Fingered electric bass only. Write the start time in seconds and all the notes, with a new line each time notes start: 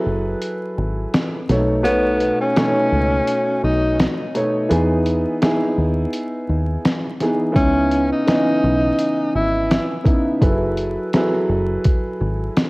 0.06 F#1
0.78 G#1
1.49 B1
2.92 C#2
3.63 B1
4.71 E2
5.78 D#2
6.49 D#2
7.56 C#2
8.63 B1
9.35 G#1
10.42 F#1
11.49 F#1
12.21 G#1